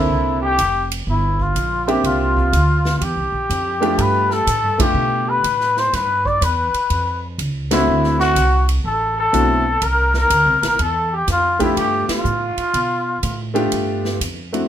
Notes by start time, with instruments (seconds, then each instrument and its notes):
Already playing: grand piano A#3 C4 D4 E4 A4, muted trumpet E4, trumpet E4
0.09 upright bass C2
0.42 trumpet G4, muted trumpet G4
0.58 upright bass F1, kick, hi-hat pedal, ride
0.92 ride
1.07 upright bass G1, trumpet E4, muted trumpet E4, kick
1.39 trumpet F4, muted trumpet F4, kick
1.55 upright bass A#1, kick, hi-hat pedal, ride
1.87 grand piano A#3 C4 D4 G4 E5, trumpet G4, muted trumpet G4, ride
2.04 upright bass C2, trumpet F4, muted trumpet F4, kick, ride
2.37 kick
2.53 upright bass D2, kick, hi-hat pedal, ride
2.85 snare
2.96 trumpet F4, muted trumpet F4
3.01 upright bass E2, trumpet G4, muted trumpet G4, kick, ride
3.16 upright bass C2
3.32 upright bass A#1
3.50 upright bass F2, kick, hi-hat pedal, ride
3.81 grand piano A3 B3 D4 F4 G4, ride
3.98 upright bass G2, trumpet B4, muted trumpet B4, kick, ride
4.30 trumpet A4, muted trumpet A4, snare
4.47 upright bass A2, kick, hi-hat pedal, ride
4.63 upright bass G2
4.78 upright bass F2, grand piano A3 B3 D4 F4 G4, trumpet G4, muted trumpet G4, kick, ride
4.94 upright bass B2
5.29 trumpet B4, muted trumpet B4
5.44 upright bass A2, kick, hi-hat pedal, ride
5.60 snare
5.77 muted trumpet C5, trumpet C5, snare
5.93 upright bass G2, trumpet B4, muted trumpet B4, kick, snare, ride
6.25 trumpet D5, muted trumpet D5, kick
6.41 upright bass E2, trumpet B4, muted trumpet B4, kick, hi-hat pedal, ride
6.74 muted upright bass stroke, ride
6.90 upright bass F2, kick, ride
7.38 upright bass C#2, kick, hi-hat pedal, ride
7.71 grand piano A3 C4 D4 E4 F#4, trumpet E4, muted trumpet E4, snare, ride
7.87 upright bass D2
8.04 snare
8.20 trumpet F#4, muted trumpet F#4, snare
8.36 upright bass C2, kick, hi-hat pedal, ride
8.69 ride
8.84 upright bass A1, trumpet A4, muted trumpet A4, kick
9.17 trumpet A4, muted trumpet A4
9.33 upright bass B1, grand piano A3 C4 D4 E4 F#4, kick, hi-hat pedal, ride
9.82 upright bass C2, trumpet A#4, muted trumpet A#4, kick, ride
10.14 trumpet A#4, snare
10.19 muted trumpet A#4
10.30 upright bass D2, kick, hi-hat pedal, ride
10.46 upright bass C2
10.62 upright bass A#1, trumpet A#4, muted trumpet A#4, snare, ride
10.79 upright bass E2, trumpet A4, kick, ride
10.83 muted trumpet A4
11.12 trumpet G4, muted trumpet G4
11.27 upright bass F2, trumpet F4, muted trumpet F4, kick, snare, hi-hat pedal, ride
11.59 grand piano A3 B3 D4 F4 G4, trumpet E4, muted trumpet E4, kick, ride
11.76 upright bass G2, trumpet G4, muted trumpet G4, kick, ride
12.08 trumpet F4, muted upright bass stroke, snare, ride
12.14 muted trumpet F4
12.24 upright bass A2, hi-hat pedal
12.57 muted upright bass stroke, ride
12.74 upright bass B2, kick, ride
13.23 upright bass A2, kick, hi-hat pedal, ride
13.54 grand piano A3 B3 D4 F4 G4, ride
13.72 upright bass G2, kick, ride
14.05 snare
14.20 upright bass F2, kick, hi-hat pedal, ride
14.53 grand piano A3 C4 D4 E4 F#4, ride